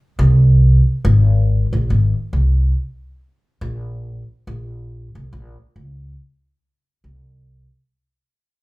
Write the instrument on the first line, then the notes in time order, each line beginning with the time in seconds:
upright bass
0.19 C2
1.05 G#1
1.73 A#1
1.90 G#1
2.33 C2
3.61 A#1
4.47 A#1
5.15 C2
5.33 A#1
5.76 C#2
7.04 C2